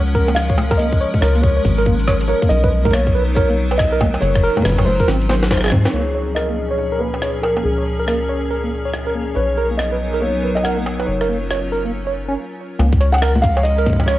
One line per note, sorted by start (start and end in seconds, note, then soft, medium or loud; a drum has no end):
0.00 1.06 C#2 medium
0.00 2.47 F3 medium
0.00 2.47 G#3 medium
0.00 2.47 C#4 medium
0.00 4.18 A#4 medium
0.00 0.38 F#5 loud
0.07 closed hi-hat soft
0.15 0.26 A#4 medium
0.15 kick loud
0.28 0.33 A#3 medium
0.28 closed hi-hat soft
0.28 high bongo medium
0.35 0.80 F5 loud
0.35 cross-stick loud
0.35 closed hi-hat medium
0.50 0.54 C#5 medium
0.50 kick loud
0.58 high bongo medium
0.58 low conga medium
0.71 0.78 A#4 loud
0.71 kick loud
0.71 closed hi-hat medium
0.71 high bongo soft
0.78 0.87 A#3 medium
0.78 1.18 D#5 medium
0.78 closed hi-hat medium
0.92 kick loud
1.01 1.08 C#5 medium
1.14 kick loud
1.14 low conga medium
1.21 1.60 C#2 medium
1.21 1.33 A#4 loud
1.21 1.26 C#5 medium
1.21 cross-stick loud
1.21 closed hi-hat medium
1.35 1.40 A#3 medium
1.35 closed hi-hat soft
1.42 1.82 C#5 medium
1.42 kick loud
1.57 1.61 C#5 medium
1.65 2.34 G#1 medium
1.65 kick loud
1.65 closed hi-hat medium
1.78 1.85 A#4 loud
1.78 closed hi-hat soft
1.86 1.94 A#3 medium
1.86 kick loud
2.00 closed hi-hat soft
2.08 2.15 C#5 medium
2.08 kick loud
2.08 cross-stick loud
2.21 closed hi-hat medium
2.28 2.40 A#4 loud
2.28 2.33 C#5 loud
2.42 2.47 A#3 medium
2.42 kick loud
2.42 closed hi-hat soft
2.49 4.17 B1 loud
2.49 5.90 F#3 medium
2.49 4.20 B3 medium
2.49 4.20 D#4 medium
2.49 2.90 D#5 loud
2.49 closed hi-hat medium
2.64 2.69 B4 medium
2.64 kick loud
2.85 2.92 A#4 loud
2.85 kick loud
2.85 kick medium
2.85 low conga medium
2.91 3.01 A#3 medium
2.91 3.33 C#5 medium
2.91 kick medium
2.91 cross-stick loud
2.91 closed hi-hat medium
3.07 kick loud
3.07 closed hi-hat soft
3.15 3.22 B4 medium
3.35 3.48 A#4 loud
3.35 3.80 C#5 loud
3.35 kick loud
3.35 closed hi-hat medium
3.50 3.54 A#3 medium
3.50 closed hi-hat soft
3.71 3.76 B4 medium
3.71 closed hi-hat soft
3.71 high bongo medium
3.78 4.18 D#5 loud
3.78 kick loud
3.78 cross-stick loud
3.78 closed hi-hat medium
3.92 3.99 A#4 loud
4.01 4.08 A#3 medium
4.01 kick loud
4.01 high bongo medium
4.01 low conga medium
4.14 closed hi-hat medium
4.14 high bongo medium
4.20 4.49 F#1 loud
4.20 4.65 C#5 loud
4.20 4.29 C#5 medium
4.20 closed hi-hat medium
4.35 kick loud
4.35 cross-stick medium
4.43 4.55 A#4 loud
4.57 4.61 A#3 medium
4.57 kick soft
4.57 kick medium
4.57 high bongo medium
4.57 low conga loud
4.62 4.86 B4 medium
4.62 kick medium
4.65 5.03 F#1 medium
4.65 kick medium
4.65 cross-stick loud
4.65 closed hi-hat medium
4.69 kick medium
4.72 kick medium
4.78 4.83 C#5 medium
4.78 kick loud
4.78 high bongo medium
4.85 5.46 C5 medium
4.85 low conga medium
5.00 5.07 A#4 loud
5.00 kick loud
5.00 closed hi-hat soft
5.08 5.71 G#1 medium
5.08 5.15 C4 medium
5.08 snare medium
5.08 closed hi-hat medium
5.21 closed hi-hat soft
5.29 5.34 C5 loud
5.29 snare medium
5.29 high tom medium
5.29 high bongo medium
5.43 snare medium
5.43 closed hi-hat soft
5.47 kick loud
5.47 closed hi-hat soft
5.51 5.58 C5 medium
5.51 cross-stick soft
5.51 snare medium
5.51 closed hi-hat medium
5.54 cross-stick medium
5.57 cross-stick medium
5.57 closed hi-hat soft
5.61 5.68 G#4 medium
5.61 cross-stick medium
5.64 cross-stick medium
5.66 cross-stick medium
5.68 cross-stick medium
5.70 5.87 G#2 loud
5.70 5.76 C4 medium
5.70 kick loud
5.70 cross-stick loud
5.70 mid tom medium
5.85 5.88 C4 medium
5.85 snare medium
5.92 7.63 C#2 medium
5.92 9.33 A#2 medium
5.92 9.33 F3 medium
5.92 6.01 A#3 medium
5.92 9.33 C#4 medium
5.92 12.36 C#4 medium
5.92 9.33 G#4 medium
5.92 6.37 C#5 medium
5.92 12.36 C#5 medium
5.92 closed hi-hat soft
6.15 6.22 C#5 medium
6.35 6.48 A#4 medium
6.35 6.80 D#5 medium
6.35 cross-stick loud
6.50 6.54 A#3 medium
6.71 6.76 C#5 medium
6.78 7.01 C#5 medium
6.92 6.99 A#4 medium
6.99 7.08 A#3 medium
6.99 7.44 B4 medium
7.14 high bongo soft
7.22 7.29 C#5 medium
7.22 cross-stick loud
7.42 7.65 A#4 medium
7.42 7.55 A#4 medium
7.42 high bongo medium
7.57 7.61 A#3 medium
7.57 high bongo soft
7.63 9.35 C#2 medium
7.63 8.08 G#4 medium
7.78 7.83 C#5 medium
8.00 8.07 A#4 medium
8.06 8.15 A#3 medium
8.06 9.10 A#4 medium
8.06 cross-stick loud
8.29 8.37 C#5 medium
8.51 8.62 A#4 medium
8.64 8.68 A#3 medium
8.85 8.90 C#5 medium
8.93 cross-stick loud
9.07 9.14 A#4 medium
9.15 9.22 A#3 medium
9.35 11.06 B1 medium
9.35 12.33 F#3 medium
9.35 11.06 B3 medium
9.35 11.06 D#4 medium
9.35 12.33 A#4 medium
9.35 9.44 B4 medium
9.35 9.80 C#5 medium
9.58 9.69 A#4 loud
9.71 9.76 A#3 medium
9.78 10.23 D#5 medium
9.78 cross-stick loud
9.92 9.97 B4 medium
10.14 10.21 A#4 medium
10.20 10.30 A#3 medium
10.20 10.57 C#5 medium
10.43 10.51 B4 medium
10.55 10.64 D#5 medium
10.55 high bongo soft
10.63 10.76 A#4 medium
10.63 11.08 F#5 medium
10.63 cross-stick loud
10.78 10.83 A#3 medium
10.86 high bongo medium
11.00 11.04 B4 medium
11.00 high bongo soft
11.06 12.36 F#1 medium
11.06 12.35 C#4 medium
11.06 12.35 F4 medium
11.06 12.32 C#5 medium
11.21 11.28 A#4 medium
11.21 cross-stick medium
11.29 11.37 A#3 medium
11.51 11.58 C#5 medium
11.51 cross-stick loud
11.72 11.83 A#4 medium
11.85 11.90 A#3 medium
12.07 12.11 C#5 medium
12.28 12.33 C#4 medium
12.79 14.19 C#2 loud
12.79 14.19 F3 medium
12.79 14.19 G#3 medium
12.79 12.87 A#3 medium
12.79 14.19 C#4 medium
12.79 14.19 A#5 medium
12.79 closed hi-hat medium
12.79 high bongo soft
12.92 kick loud
12.92 closed hi-hat soft
13.01 13.08 C#5 medium
13.01 closed hi-hat loud
13.12 13.41 F#5 loud
13.12 high bongo medium
13.18 13.33 A#4 loud
13.18 closed hi-hat soft
13.22 cross-stick loud
13.22 closed hi-hat medium
13.35 13.40 A#3 medium
13.35 closed hi-hat soft
13.35 low conga medium
13.42 13.63 F5 loud
13.42 kick loud
13.42 closed hi-hat loud
13.57 13.61 C#5 medium
13.57 closed hi-hat soft
13.57 high bongo medium
13.63 14.08 D#5 loud
13.63 closed hi-hat medium
13.78 13.85 A#4 loud
13.78 closed hi-hat soft
13.86 13.94 A#3 medium
13.86 kick loud
13.86 closed hi-hat loud
13.90 kick medium
13.93 kick medium
13.96 kick medium
14.00 kick soft
14.00 closed hi-hat soft
14.00 high bongo medium
14.02 kick soft
14.04 kick soft
14.06 14.19 C#5 medium
14.06 14.15 C#5 medium
14.06 kick soft
14.06 cross-stick loud
14.06 closed hi-hat medium